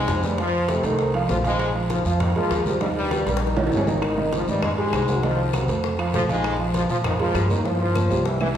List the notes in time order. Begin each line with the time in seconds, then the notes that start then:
Already playing: G#2 G#3 C4 C5 D#5
0.08 F2, high bongo, low bongo, high timbale, low timbale, short guiro
0.23 G2 G3 A3 A4 C5, high conga, short guiro
0.38 F3 F4 F5, high bongo, high conga, high timbale, long guiro
0.53 high bongo, high conga
0.68 C3 A3 C4 A4 C5, high bongo, high conga, high timbale, short guiro
0.83 C2 D#3 A3 D#4 A4 C5, high timbale, short guiro
0.98 high bongo, high conga, long guiro
1.14 F3 F4 F5, high bongo, high timbale
1.29 A#1 F3 A3 F4 A4 C5, high bongo, low bongo, high conga, low timbale, short guiro
1.44 G#2 F3 G#3 F4 F5, high bongo, high conga, high timbale, short guiro
1.59 high bongo, high conga, high timbale, long guiro
1.75 F3 F4 F5, high conga
1.90 F3 F4, high bongo, high conga, high timbale, short guiro
2.05 F2 F3 F4 F5, high conga, short guiro
2.20 D#3 D#4, high bongo, high conga, low conga, high timbale, long guiro
2.36 F3 G#3 F4 G#4 A#4, high conga, low conga, high timbale
2.50 D#2, high bongo, low bongo, high conga, high timbale, short guiro
2.66 F3 G3 F4 G4 A#4, high conga, short guiro
2.81 G2 D#3 G3 D#4 D#5, high bongo, high conga, high timbale, long guiro
2.96 G2 G3, high bongo, high conga
3.11 G3 G4 A#4, high bongo, high conga, high timbale, short guiro
3.26 A#1 G3 G4 A#4, high bongo, high timbale, short guiro
3.37 high bongo
3.42 D#3 D#4, high conga, long guiro
3.47 high bongo
3.57 D#3 D#4 D#5, high conga, high timbale
3.67 low bongo, high timbale
3.72 G#1 C#3 G3 C#4 G4 A#4, high conga, short guiro
3.77 low timbale
3.87 D#3 D#4 D#5, high conga, low timbale, short guiro
3.97 low bongo
4.02 high bongo, high conga, high timbale, long guiro, claves
4.17 D#3 D#4 D#5, high conga
4.32 F3 F4, high bongo, high conga, high timbale, short guiro
4.47 G2 G#2 D#3 G3 D#4 D#5, high conga, short guiro
4.62 G#2 G#3, high bongo, high conga, low conga, high timbale, long guiro, claves
4.78 G#2 G#3 G4 G#4, high conga, high timbale
4.93 C2, high bongo, low bongo, high conga, high timbale, low timbale, short guiro, claves
5.08 F#3 F#4 A#4, high conga, short guiro
5.23 D#3 F3 D#4 F4 D#5, high bongo, high conga, high timbale, long guiro
5.38 high bongo, high conga
5.53 C3 F#3 C4 F#4 A#4, high bongo, high conga, high timbale, short guiro, claves
5.68 F2 A3 A4 C5, high timbale, short guiro
5.84 high bongo, high conga, long guiro
5.99 F3 F4 F5, high bongo, high conga, high timbale, claves
6.13 A#1 F3 A3 F4 A4 C5, high bongo, low bongo, high conga, short guiro
6.29 G#2 F3 G#3 F4 F5, high bongo, high conga, high timbale, short guiro
6.44 high bongo, high conga, high timbale, long guiro, claves
6.59 F3 F4 F5, high conga
6.74 F3 F4, high bongo, high conga, high timbale, short guiro
6.89 A#2 F3 F4 F5, high conga, short guiro
7.04 D#3 D#4, high bongo, high conga, low conga, high timbale, long guiro, claves
7.20 F3 G#3 F4 G#4 A#4, high conga, low conga, high timbale
7.34 G2, high bongo, low bongo, high conga, high timbale, low timbale, short guiro, claves
7.50 D#3 A#3 D#4 A#4 C#5, high conga, short guiro
7.65 F3 F4 F5, high bongo, high conga, high timbale, long guiro
7.80 F3 F4, high bongo, high conga
7.95 A#3 A#4 C#5, high bongo, high conga, short guiro, claves
8.10 C2 G3 G4 A#4, low timbale, short guiro
8.26 E3 E4, high bongo, high conga, long guiro
8.40 E3 E4 E5, high bongo, low timbale, claves